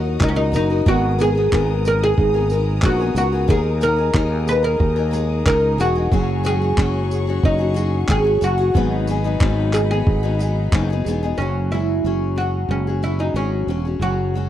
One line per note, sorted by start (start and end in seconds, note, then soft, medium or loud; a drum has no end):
0.00 0.17 D#2 loud
0.00 0.19 F#3 medium
0.00 0.87 F#3 medium
0.00 0.86 A#3 medium
0.00 0.19 D#4 medium
0.00 0.20 D#4 medium
0.00 0.20 F#4 medium
0.00 0.23 F#4 medium
0.00 0.20 A#4 medium
0.00 0.84 A#4 medium
0.00 0.84 D#5 medium
0.00 0.83 F#5 medium
0.00 6.08 D#6 medium
0.19 0.54 C#2 medium
0.19 0.36 D#3 medium
0.19 0.37 F#3 medium
0.19 0.37 D#4 medium
0.19 0.29 D#4 medium
0.19 0.36 F#4 medium
0.19 0.34 A#4 medium
0.19 kick loud
0.19 clap loud
0.28 0.35 C#4 medium
0.35 0.54 D#4 medium
0.35 0.52 D#4 soft
0.35 0.53 F#4 soft
0.35 0.53 A#4 soft
0.52 0.83 F#1 medium
0.52 0.69 F#3 medium
0.52 0.70 D#4 medium
0.52 0.88 D#4 medium
0.52 0.70 F#4 medium
0.52 0.69 A#4 medium
0.52 tambourine medium
0.70 0.87 D#4 soft
0.70 0.87 F#4 soft
0.70 0.86 A#4 medium
0.86 1.48 G#1 loud
0.86 1.19 G#2 medium
0.86 1.19 D#3 medium
0.86 1.17 G#3 medium
0.86 1.18 B3 medium
0.86 3.47 B3 medium
0.86 1.21 F#4 medium
0.86 1.19 G#4 medium
0.86 11.34 G#4 medium
0.86 1.20 A#4 medium
0.86 6.08 A#5 medium
0.86 kick loud
1.18 1.35 G#3 medium
1.18 1.35 B3 medium
1.18 1.36 G#4 medium
1.18 1.82 G#4 loud
1.18 1.34 A#4 medium
1.18 tambourine medium
1.35 1.51 G#3 soft
1.35 1.52 B3 soft
1.35 1.52 G#4 soft
1.35 1.52 A#4 medium
1.52 2.14 G#1 medium
1.52 2.34 G#2 medium
1.52 2.82 D#3 medium
1.52 2.37 G#3 medium
1.52 2.35 B3 medium
1.52 2.18 D#4 medium
1.52 2.34 G#4 medium
1.52 2.34 A#4 medium
1.52 kick loud
1.52 clap loud
1.85 2.51 A#4 medium
1.85 2.03 A#4 medium
1.85 tambourine medium
2.03 2.85 G#4 loud
2.18 2.79 G#1 medium
2.18 2.83 D#4 medium
2.18 kick loud
2.34 2.50 G#3 soft
2.34 2.52 B3 soft
2.34 2.51 G#4 medium
2.34 2.50 A#4 medium
2.50 2.81 G#3 medium
2.50 2.82 B3 medium
2.50 2.82 G#4 medium
2.50 tambourine medium
2.54 2.83 A#4 medium
2.82 3.13 A#1 loud
2.82 2.99 G#2 medium
2.82 2.99 D#3 medium
2.82 2.99 G#3 medium
2.82 3.00 B3 medium
2.82 4.14 D#4 medium
2.82 3.16 F#4 medium
2.82 2.99 G#4 medium
2.82 2.98 A#4 medium
2.82 kick loud
2.82 clap loud
3.00 3.14 G#3 soft
3.00 3.15 B3 soft
3.00 3.16 G#4 soft
3.00 3.16 A#4 soft
3.15 3.46 C#2 medium
3.15 3.32 G#3 medium
3.15 3.33 B3 medium
3.15 3.50 F#4 medium
3.15 3.32 G#4 medium
3.15 3.31 A#4 medium
3.15 tambourine medium
3.32 3.48 G#3 soft
3.32 3.49 B3 soft
3.32 3.48 G#4 soft
3.32 3.49 A#4 soft
3.47 4.11 D#2 loud
3.47 3.81 D#3 medium
3.47 3.80 G#3 medium
3.47 3.81 A#3 medium
3.47 3.81 D#4 medium
3.47 3.81 G#4 medium
3.47 3.59 G#4 loud
3.47 3.82 A#4 medium
3.47 6.08 D#5 medium
3.47 kick loud
3.81 3.98 G#3 medium
3.81 6.19 A#3 medium
3.81 3.98 D#4 medium
3.81 3.97 G#4 medium
3.81 4.48 A#4 loud
3.81 3.95 A#4 medium
3.81 tambourine medium
3.96 4.14 D#4 soft
3.96 4.15 G#4 medium
3.96 4.14 A#4 medium
4.14 4.76 D#2 loud
4.14 4.64 D#3 medium
4.14 4.64 G#3 medium
4.14 4.64 D#4 medium
4.14 4.64 G#4 medium
4.14 4.62 A#4 medium
4.14 kick loud
4.14 clap loud
4.47 5.13 G#4 medium
4.47 4.64 B4 loud
4.47 tambourine medium
4.63 4.98 D#4 soft
4.63 4.97 G#4 soft
4.63 4.95 A#4 medium
4.63 5.46 A#4 medium
4.80 5.42 D#2 loud
4.80 5.45 D#4 medium
4.80 kick loud
4.96 5.11 D#4 soft
4.96 5.12 G#4 soft
4.96 5.13 A#4 medium
5.11 5.45 G#3 medium
5.11 5.45 D#4 medium
5.11 5.46 G#4 medium
5.11 5.46 A#4 medium
5.11 tambourine medium
5.46 5.76 C#2 loud
5.46 5.79 D#3 medium
5.46 5.77 G#3 medium
5.46 5.79 D#4 medium
5.46 5.79 G#4 medium
5.46 5.80 A#4 medium
5.46 5.79 A#4 medium
5.46 kick loud
5.46 clap loud
5.78 6.09 E1 medium
5.78 5.95 G#3 medium
5.78 5.96 D#4 medium
5.78 6.46 F#4 loud
5.78 5.95 G#4 medium
5.78 5.94 A#4 medium
5.78 tambourine medium
5.95 6.13 D#4 soft
5.95 6.12 G#4 soft
5.95 6.12 A#4 medium
6.11 6.73 F#1 loud
6.11 6.42 F#3 medium
6.11 6.43 C#4 medium
6.11 6.44 F#4 medium
6.11 6.45 G#4 medium
6.11 8.72 C#5 medium
6.11 8.72 F#5 medium
6.11 8.72 C#6 medium
6.11 kick loud
6.44 6.61 F#3 medium
6.44 9.07 G#3 medium
6.44 6.61 C#4 medium
6.44 6.61 F#4 medium
6.44 6.60 G#4 medium
6.44 7.45 G#4 loud
6.44 tambourine medium
6.62 6.78 C#4 soft
6.62 6.78 F#4 soft
6.62 6.78 G#4 medium
6.77 7.39 F#1 medium
6.77 7.27 F#3 medium
6.77 7.27 C#4 medium
6.77 7.28 F#4 medium
6.77 7.26 G#4 medium
6.77 kick loud
6.77 clap loud
7.11 7.76 G#4 medium
7.11 tambourine medium
7.27 7.60 C#4 soft
7.27 7.59 F#4 soft
7.27 7.57 G#4 medium
7.43 8.05 F#1 loud
7.43 8.08 C#4 medium
7.43 8.10 D#4 medium
7.43 kick loud
7.59 7.74 C#4 soft
7.59 7.75 F#4 medium
7.59 7.75 G#4 medium
7.74 8.06 F#3 medium
7.74 8.07 C#4 medium
7.74 8.08 F#4 medium
7.74 8.08 G#4 medium
7.74 tambourine medium
8.08 8.39 G#1 medium
8.08 8.25 F#3 medium
8.08 8.25 C#4 medium
8.08 8.25 F#4 medium
8.08 8.23 G#4 medium
8.08 8.43 G#4 loud
8.08 kick loud
8.08 clap loud
8.24 8.41 C#4 soft
8.24 8.42 F#4 soft
8.24 8.41 G#4 medium
8.41 8.72 F#1 medium
8.41 8.58 F#3 medium
8.41 8.58 C#4 medium
8.41 8.59 F#4 medium
8.41 9.73 F#4 medium
8.41 8.58 G#4 medium
8.41 tambourine medium
8.59 8.76 C#4 soft
8.59 8.76 F#4 soft
8.59 8.75 G#4 soft
8.74 9.36 G#1 medium
8.74 9.08 G#2 medium
8.74 9.08 D#3 medium
8.74 9.07 F#3 medium
8.74 9.08 B3 medium
8.74 9.08 D#4 medium
8.74 9.09 G#4 medium
8.74 11.35 D#5 medium
8.74 11.35 F#5 medium
8.74 11.35 B5 medium
8.74 kick loud
9.07 9.24 F#3 medium
9.07 9.25 B3 medium
9.07 9.24 D#4 medium
9.07 9.23 G#4 medium
9.07 tambourine medium
9.24 9.40 F#3 soft
9.24 9.40 B3 soft
9.24 9.41 D#4 medium
9.24 9.40 G#4 medium
9.40 10.02 G#1 loud
9.40 9.89 G#2 medium
9.40 9.90 D#3 medium
9.40 9.90 F#3 medium
9.40 9.90 B3 medium
9.40 9.90 D#4 medium
9.40 9.90 G#4 medium
9.40 kick loud
9.40 clap loud
9.73 10.39 G#4 medium
9.73 9.79 G#4 medium
9.73 clap medium
9.73 tambourine medium
9.91 10.24 F#3 soft
9.91 10.24 B3 soft
9.91 10.23 D#4 soft
9.91 11.01 G#4 medium
9.91 10.22 G#4 soft
10.06 10.68 G#1 medium
10.06 10.71 D#4 medium
10.06 kick loud
10.23 10.38 F#3 soft
10.23 10.39 B3 soft
10.23 10.40 D#4 medium
10.23 10.39 G#4 medium
10.39 10.72 F#3 medium
10.39 10.72 B3 medium
10.39 10.72 D#4 medium
10.39 10.73 G#4 medium
10.39 tambourine medium
10.72 11.02 F#1 medium
10.72 10.88 G#2 medium
10.72 10.89 D#3 medium
10.72 10.89 F#3 medium
10.72 10.89 B3 medium
10.72 10.89 D#4 medium
10.72 10.89 G#4 medium
10.72 kick loud
10.72 clap loud
10.90 11.06 F#3 soft
10.90 11.07 B3 soft
10.90 11.06 D#4 soft
10.90 11.05 G#4 medium
11.05 11.36 E1 medium
11.05 11.22 F#3 medium
11.05 11.23 B3 medium
11.05 12.36 G#4 medium
11.05 tambourine medium
11.09 11.23 D#4 medium
11.09 11.21 G#4 medium
11.23 11.39 F#3 soft
11.23 11.39 B3 soft
11.23 11.39 D#4 medium
11.23 11.38 G#4 medium
11.38 11.99 F#1 medium
11.38 11.70 F#3 medium
11.38 11.71 C#4 medium
11.38 11.72 C#4 medium
11.42 11.72 F#4 medium
11.42 11.72 G#4 medium
11.71 12.04 F#3 soft
11.71 12.68 G#3 medium
11.71 12.05 C#4 medium
11.71 12.33 E4 medium
11.71 12.05 F#4 medium
11.71 12.05 G#4 medium
12.04 12.65 F#1 medium
12.04 12.37 F#3 medium
12.04 12.37 C#4 medium
12.04 12.38 F#4 medium
12.04 12.38 G#4 medium
12.36 12.87 F#3 soft
12.36 12.87 C#4 medium
12.36 12.70 F#4 medium
12.36 13.34 G#4 medium
12.41 12.88 F#4 medium
12.41 12.86 G#4 medium
12.69 13.31 F#1 medium
12.69 14.33 G#3 medium
12.69 13.00 C#4 medium
12.87 13.03 C#4 soft
12.87 13.04 F#4 soft
12.87 13.03 G#4 soft
13.03 13.19 F#3 medium
13.03 13.19 C#4 medium
13.03 13.20 E4 medium
13.03 13.20 F#4 medium
13.03 13.18 G#4 medium
13.19 13.35 C#4 soft
13.19 13.36 D#4 medium
13.19 13.36 F#4 soft
13.19 13.35 G#4 soft
13.34 13.65 G#1 medium
13.34 13.67 F#3 medium
13.34 13.68 C#4 medium
13.34 14.02 C#4 medium
13.34 13.69 F#4 medium
13.34 13.69 G#4 medium
13.67 13.98 E1 medium
13.67 13.84 F#3 medium
13.67 13.85 C#4 medium
13.67 13.86 F#4 medium
13.67 13.84 G#4 medium
13.85 14.02 C#4 soft
13.85 14.02 F#4 soft
13.85 14.01 G#4 soft
14.00 14.49 F#1 medium
14.00 14.34 F#3 medium
14.00 14.34 C#4 medium
14.00 14.49 F#4 medium
14.00 14.35 F#4 medium
14.00 14.35 G#4 medium
14.34 14.49 F#3 medium
14.34 14.49 G#3 medium
14.34 14.49 C#4 medium
14.34 14.49 F#4 medium
14.38 14.49 G#4 medium